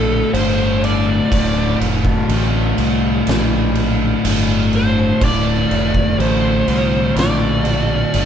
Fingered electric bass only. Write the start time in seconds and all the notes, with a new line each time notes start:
Already playing: A#1
0.33 G1
1.31 D1
1.80 F1
2.28 A1
2.78 C2
3.27 A#1
4.24 G1
5.21 D1
5.71 F1
6.18 A1
6.68 C2
7.16 A#1
8.14 G1